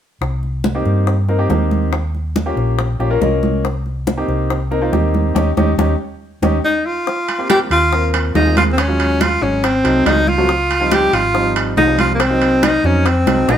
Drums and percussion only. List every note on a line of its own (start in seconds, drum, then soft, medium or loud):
0.22 high bongo medium
0.22 high conga soft
0.43 high conga soft
0.64 high bongo medium
0.64 high conga medium
0.86 high bongo soft
1.07 high bongo medium
1.07 high conga soft
1.28 high bongo soft
1.28 high conga soft
1.50 high bongo soft
1.50 low bongo medium
1.50 high conga medium
1.71 high bongo soft
1.71 high conga medium
1.93 high bongo medium
1.93 high conga soft
2.15 high conga soft
2.36 high bongo medium
2.36 high conga medium
2.57 high bongo soft
2.79 high bongo medium
2.79 high conga soft
3.00 high bongo soft
3.00 high conga soft
3.21 high bongo soft
3.21 low bongo medium
3.21 high conga medium
3.43 high bongo soft
3.43 high conga medium
3.64 high bongo medium
3.64 high conga soft
3.86 high conga soft
4.07 high bongo medium
4.07 high conga medium
4.29 high bongo soft
4.50 high bongo medium
4.50 high conga soft
4.71 high bongo soft
4.71 high conga soft
4.93 high bongo soft
4.93 low bongo medium
4.93 high conga medium
5.14 high bongo soft
5.14 high conga medium
5.36 high bongo medium
5.36 high conga medium
5.57 high bongo medium
5.57 high conga medium
5.79 high bongo medium
5.79 high conga medium
6.43 high bongo medium
6.43 high conga medium
7.07 high bongo medium
7.07 high conga soft
7.29 high conga soft
7.29 high timbale medium
7.50 high bongo medium
7.50 high conga medium
7.50 high timbale medium
7.50 low timbale medium
7.71 high bongo soft
7.71 high timbale medium
7.93 high bongo medium
7.93 high conga soft
8.14 high bongo soft
8.14 high conga soft
8.14 high timbale medium
8.35 high bongo soft
8.35 low bongo medium
8.35 high conga medium
8.35 low timbale medium
8.57 high bongo soft
8.57 high conga medium
8.57 high timbale medium
8.78 high bongo medium
8.78 high conga soft
8.78 high timbale medium
8.99 high conga soft
8.99 high timbale medium
9.21 high bongo medium
9.21 high conga medium
9.21 high timbale medium
9.21 low timbale medium
9.43 high bongo soft
9.63 high bongo medium
9.63 high conga soft
9.63 high timbale medium
9.85 high bongo soft
9.85 high conga soft
9.85 high timbale medium
10.06 high bongo soft
10.06 low bongo medium
10.06 high conga medium
10.06 high timbale medium
10.06 low timbale medium
10.27 high bongo soft
10.27 high conga medium
10.49 high bongo medium
10.49 high conga soft
10.70 high conga soft
10.70 high timbale medium
10.91 high bongo medium
10.91 high conga medium
10.91 high timbale medium
10.91 low timbale medium
11.13 high bongo soft
11.13 high timbale medium
11.34 high bongo medium
11.34 high conga soft
11.56 high bongo soft
11.56 high conga soft
11.56 high timbale medium
11.77 high bongo soft
11.77 low bongo medium
11.77 high conga medium
11.77 low timbale medium
11.99 high bongo soft
11.99 high conga medium
11.99 high timbale medium
12.20 high bongo medium
12.20 high conga soft
12.20 high timbale medium
12.42 high conga soft
12.42 high timbale medium
12.63 high bongo medium
12.63 high conga medium
12.63 high timbale medium
12.63 low timbale medium
12.84 high bongo soft
13.06 high bongo medium
13.06 high conga soft
13.06 high timbale medium
13.27 high bongo medium
13.27 high conga medium
13.27 high timbale medium
13.49 low bongo medium
13.49 high timbale medium